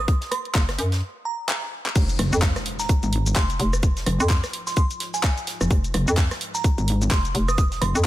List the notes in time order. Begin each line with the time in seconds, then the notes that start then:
0.08 D#6, kick, closed hi-hat
0.21 snare, closed hi-hat
0.31 C6, cross-stick, closed hi-hat, open hi-hat
0.45 closed hi-hat
0.55 F#1, kick, snare, clap, closed hi-hat
0.69 cross-stick, snare, closed hi-hat
0.78 F#2, closed hi-hat, open hi-hat
0.92 snare, closed hi-hat
1.25 A#5
1.49 clap
1.86 clap
1.96 F1 G#3 F4 D#5, kick, closed hi-hat, crash, impact, shaker
2.09 closed hi-hat, shaker
2.19 F#1, cross-stick, closed hi-hat, open hi-hat
2.33 F2, shaker
2.42 kick, snare, clap, closed hi-hat, shaker
2.56 cross-stick, snare, closed hi-hat, shaker
2.65 closed hi-hat, open hi-hat
2.79 A#5, snare, closed hi-hat, shaker
2.89 kick, closed hi-hat, shaker
3.03 G#1, closed hi-hat, shaker
3.12 closed hi-hat, open hi-hat
3.26 closed hi-hat, shaker
3.36 F1 C6, kick, snare, clap, closed hi-hat, shaker
3.50 closed hi-hat, shaker
3.60 F1, closed hi-hat, open hi-hat
3.73 cross-stick, closed hi-hat, shaker
3.82 kick, closed hi-hat, shaker
3.97 snare, closed hi-hat, shaker
4.06 F#1, cross-stick, closed hi-hat, open hi-hat
4.20 F2 C6, closed hi-hat, shaker
4.29 C6, kick, snare, clap, closed hi-hat, shaker
4.43 cross-stick, snare, closed hi-hat, shaker
4.53 closed hi-hat, open hi-hat
4.67 C6, snare, closed hi-hat, shaker
4.76 C6, kick, closed hi-hat, shaker
4.91 closed hi-hat, shaker
5.00 snare, closed hi-hat, open hi-hat
5.14 G#5, snare, closed hi-hat, shaker
5.23 kick, snare, clap, closed hi-hat, shaker
5.37 closed hi-hat, shaker
5.47 snare, closed hi-hat, open hi-hat
5.61 F1, cross-stick, closed hi-hat, shaker
5.71 F1, kick, closed hi-hat, shaker
5.84 closed hi-hat, shaker
5.94 F#1, cross-stick, closed hi-hat, open hi-hat
6.08 F2, shaker
6.17 kick, snare, clap, closed hi-hat, shaker
6.31 cross-stick, snare, closed hi-hat, shaker
6.41 closed hi-hat, open hi-hat
6.54 A#5, snare, closed hi-hat, shaker
6.64 kick, closed hi-hat, shaker
6.78 G#1, closed hi-hat, shaker
6.88 closed hi-hat, open hi-hat
7.02 closed hi-hat, shaker
7.11 F1 C6, kick, snare, clap, closed hi-hat, shaker
7.25 closed hi-hat, shaker
7.35 F1, closed hi-hat, open hi-hat
7.48 D#6, cross-stick, closed hi-hat, shaker
7.58 D#6, kick, closed hi-hat, shaker
7.72 snare, closed hi-hat, shaker
7.81 F#1 C6, cross-stick, closed hi-hat, open hi-hat
7.95 F2, closed hi-hat, shaker